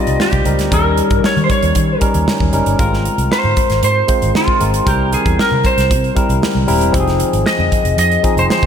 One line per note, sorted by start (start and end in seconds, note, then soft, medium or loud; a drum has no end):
0.00 0.45 G3 medium
0.00 0.46 C4 medium
0.00 0.46 D#4 medium
0.00 0.27 F4 medium
0.00 0.46 A#4 medium
0.00 0.22 D#5 medium
0.07 0.16 C2 medium
0.07 closed hi-hat soft
0.07 high conga medium
0.20 0.73 G4 medium
0.20 snare medium
0.20 high conga medium
0.32 0.42 C2 medium
0.32 kick medium
0.32 closed hi-hat soft
0.45 0.55 C#2 medium
0.45 0.62 G3 medium
0.45 0.62 C4 medium
0.45 0.62 D#4 medium
0.45 0.62 A#4 medium
0.45 closed hi-hat medium
0.45 high conga medium
0.45 low conga medium
0.59 0.68 D2 medium
0.59 snare soft
0.59 closed hi-hat medium
0.71 1.00 D#2 medium
0.71 1.37 G3 medium
0.71 1.37 C#4 medium
0.71 1.37 D#4 medium
0.71 1.37 A#4 medium
0.71 1.26 A#4 medium
0.71 kick loud
0.71 closed hi-hat medium
0.71 muted conga soft
0.71 low conga medium
0.97 closed hi-hat medium
0.97 high conga medium
1.10 1.20 G2 medium
1.10 kick medium
1.10 closed hi-hat soft
1.24 1.44 C#5 medium
1.24 muted fingered electric bass stroke soft
1.24 snare loud
1.24 muted conga soft
1.37 1.46 D#3 medium
1.37 closed hi-hat soft
1.37 high conga medium
1.44 1.50 C5 medium
1.50 1.99 C#5 medium
1.50 kick medium
1.50 closed hi-hat medium
1.50 muted conga soft
1.50 low conga medium
1.63 1.72 D#2 medium
1.63 closed hi-hat medium
1.75 1.94 D#3 medium
1.75 kick medium
1.75 closed hi-hat medium
1.75 muted conga soft
2.01 2.34 G3 medium
2.01 2.34 C#4 medium
2.01 2.34 D#4 medium
2.01 2.34 A#4 medium
2.01 kick medium
2.01 closed hi-hat medium
2.14 2.24 D#2 medium
2.14 closed hi-hat soft
2.14 high conga medium
2.28 snare loud
2.28 muted conga soft
2.28 high conga medium
2.40 2.50 D#2 medium
2.40 kick medium
2.40 high conga soft
2.52 2.63 F#1 medium
2.52 2.69 G3 medium
2.52 2.69 C#4 medium
2.52 2.70 D#4 medium
2.52 2.70 A#4 medium
2.52 closed hi-hat medium
2.52 muted conga soft
2.52 high conga medium
2.52 low conga medium
2.66 2.76 G1 medium
2.66 closed hi-hat soft
2.78 3.07 G#1 medium
2.78 3.44 G#3 medium
2.78 3.44 C4 medium
2.78 3.45 F4 medium
2.78 3.45 A#4 medium
2.78 kick loud
2.78 closed hi-hat medium
2.78 low conga medium
2.93 snare soft
3.05 closed hi-hat medium
3.05 high conga medium
3.18 3.27 C2 medium
3.18 closed hi-hat soft
3.32 3.80 C5 medium
3.32 snare medium
3.44 3.54 G#2 medium
3.44 high conga medium
3.56 kick medium
3.56 closed hi-hat medium
3.56 muted conga soft
3.56 low conga medium
3.70 3.79 G#1 medium
3.70 snare soft
3.70 closed hi-hat medium
3.83 4.02 G#2 medium
3.83 4.32 C5 medium
3.83 closed hi-hat medium
3.83 muted conga soft
4.07 4.41 G#3 medium
4.07 4.41 C4 medium
4.07 4.41 F4 medium
4.07 4.41 C5 medium
4.07 kick medium
4.07 closed hi-hat medium
4.22 4.31 G#1 medium
4.22 closed hi-hat soft
4.22 high conga medium
4.35 4.89 F4 medium
4.35 snare medium
4.35 high conga medium
4.48 kick medium
4.60 4.80 G#1 medium
4.60 4.77 G#3 medium
4.60 4.77 C4 medium
4.60 4.77 F4 medium
4.60 4.77 A#4 medium
4.60 closed hi-hat medium
4.60 high conga medium
4.60 low conga medium
4.74 closed hi-hat soft
4.86 5.15 C2 medium
4.86 5.52 G3 medium
4.86 5.52 C4 medium
4.86 4.93 D#4 soft
4.86 5.11 G4 medium
4.86 5.52 A#4 medium
4.86 kick loud
4.86 closed hi-hat medium
4.86 muted conga soft
4.86 low conga medium
4.93 5.55 E4 medium
5.13 5.40 G#4 medium
5.13 closed hi-hat medium
5.13 muted conga soft
5.13 high conga medium
5.26 5.35 E2 medium
5.26 kick medium
5.26 closed hi-hat soft
5.38 5.66 A#4 medium
5.38 muted fingered electric bass stroke soft
5.38 snare loud
5.51 5.61 C3 medium
5.51 high conga medium
5.64 6.14 C5 medium
5.64 kick medium
5.64 closed hi-hat medium
5.64 muted conga soft
5.64 low conga medium
5.77 5.92 C2 medium
5.77 snare soft
5.77 closed hi-hat soft
5.91 6.09 C3 medium
5.91 kick medium
5.91 closed hi-hat medium
6.04 closed hi-hat soft
6.15 6.48 G3 medium
6.15 6.49 C4 medium
6.15 6.49 E4 medium
6.15 6.49 A#4 medium
6.15 kick medium
6.15 closed hi-hat medium
6.29 6.39 C2 medium
6.29 closed hi-hat soft
6.29 high conga medium
6.43 snare loud
6.43 high conga medium
6.55 6.65 C2 medium
6.55 high conga soft
6.67 6.81 D#1 medium
6.67 6.84 G3 medium
6.67 6.84 C4 medium
6.67 6.84 E4 medium
6.67 6.85 A#4 medium
6.67 open hi-hat medium
6.67 high conga medium
6.67 low conga medium
6.81 6.90 E1 medium
6.81 closed hi-hat soft
6.92 7.22 F1 loud
6.92 7.59 F3 medium
6.92 7.59 C4 medium
6.92 7.59 D#4 medium
6.92 7.00 G4 medium
6.92 kick loud
6.92 closed hi-hat medium
6.92 muted conga soft
6.92 low conga medium
7.00 7.62 G#4 medium
7.07 snare soft
7.07 closed hi-hat soft
7.20 closed hi-hat medium
7.20 high conga medium
7.33 7.43 G#1 medium
7.33 closed hi-hat soft
7.46 7.98 D#5 loud
7.46 snare loud
7.46 muted conga soft
7.59 7.68 F2 medium
7.59 high conga medium
7.72 kick medium
7.72 closed hi-hat medium
7.72 low conga medium
7.85 7.94 F1 medium
7.85 closed hi-hat medium
7.98 8.17 F2 loud
7.98 8.38 D#5 loud
7.98 closed hi-hat medium
7.98 muted conga soft
8.12 closed hi-hat soft
8.23 8.56 F3 medium
8.23 8.56 C4 medium
8.23 8.57 D#4 medium
8.23 8.57 G#4 medium
8.23 kick medium
8.23 closed hi-hat medium
8.23 muted conga soft
8.37 8.46 F1 medium
8.37 8.44 C5 medium
8.37 closed hi-hat medium
8.37 high conga medium
8.50 8.66 C5 medium
8.50 snare medium
8.50 muted conga soft
8.50 high conga medium
8.63 8.66 F1 medium
8.63 kick medium
8.63 high conga soft